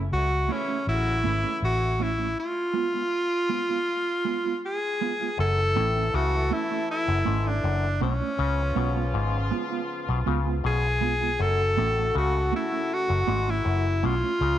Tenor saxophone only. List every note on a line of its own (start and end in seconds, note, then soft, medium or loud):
0.13 0.53 F#4 loud
0.52 0.88 C#4 medium
0.88 1.59 E4 loud
1.64 2.04 F#4 loud
2.02 2.39 E4 medium
2.39 4.60 F4 loud
4.65 5.35 G#4 loud
5.40 6.16 A4 loud
6.15 6.54 F#4 medium
6.53 6.90 E4 medium
6.91 7.49 E4 loud
7.47 8.02 D4 medium
8.03 9.49 C#4 medium
10.66 11.43 G#4 loud
11.41 12.16 A4 loud
12.18 12.52 F#4 loud
12.56 12.95 E4 medium
12.93 13.51 F#4 loud
13.50 14.07 E4 medium
14.06 14.59 F4 medium